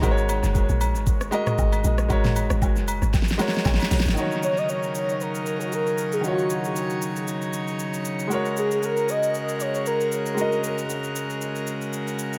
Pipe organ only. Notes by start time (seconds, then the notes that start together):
4.17 C#3 F#3 D#4 A#4
6.24 C#5
8.31 G#3 F#4 A#4